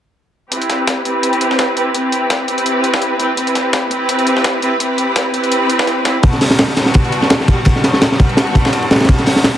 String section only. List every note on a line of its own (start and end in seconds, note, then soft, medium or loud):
0.51 1.03 C4 medium
0.51 1.03 E4 medium
0.51 1.03 G4 medium
0.51 1.03 B4 medium
1.05 1.75 C4 medium
1.05 1.75 E4 medium
1.05 1.75 G4 medium
1.05 1.75 B4 loud
1.76 1.92 C4 medium
1.76 1.92 E4 medium
1.76 1.92 G4 medium
1.76 1.92 B4 medium
1.95 2.46 C4 medium
1.95 2.46 E4 medium
1.95 2.46 G4 medium
1.95 2.46 B4 medium
2.48 3.18 C4 medium
2.48 3.18 E4 medium
2.48 3.18 G4 medium
2.48 3.18 B4 loud
3.19 3.35 C4 medium
3.19 3.35 E4 medium
3.19 3.35 G4 medium
3.19 3.35 B4 medium
3.37 3.89 C4 medium
3.37 3.89 E4 medium
3.37 3.89 G4 medium
3.37 3.89 B4 medium
3.91 4.60 C4 medium
3.91 4.60 E4 medium
3.91 4.61 G4 medium
3.91 4.60 B4 loud
4.62 4.78 C4 medium
4.62 4.77 E4 medium
4.62 4.78 G4 medium
4.62 4.78 B4 medium
4.80 5.32 C4 medium
4.80 5.32 E4 medium
4.80 5.32 G4 medium
4.80 5.32 B4 medium
5.34 6.03 C4 medium
5.34 6.03 E4 medium
5.34 6.03 G4 medium
5.34 6.03 B4 loud
6.05 6.20 C4 medium
6.05 6.20 E4 medium
6.05 6.20 G4 medium
6.05 6.20 B4 medium
6.23 6.75 G3 medium
6.23 6.75 B3 medium
6.23 6.75 D4 medium
6.23 6.75 F#4 medium
6.77 7.46 G3 medium
6.77 7.46 B3 medium
6.77 7.46 D4 medium
6.77 7.46 F#4 loud
7.48 7.63 G3 medium
7.48 7.63 B3 medium
7.48 7.63 D4 medium
7.48 7.63 F#4 medium
7.66 8.18 G3 medium
7.66 8.18 B3 medium
7.66 8.18 D4 medium
7.66 8.18 F#4 medium
8.20 8.89 G3 medium
8.20 8.89 B3 medium
8.20 8.89 D4 medium
8.20 8.89 F#4 loud
8.91 9.06 G3 medium
8.91 9.06 B3 medium
8.91 9.06 D4 medium
8.91 9.06 F#4 medium
9.09 9.58 G3 medium
9.09 9.58 B3 medium
9.09 9.58 D4 medium
9.09 9.58 F#4 medium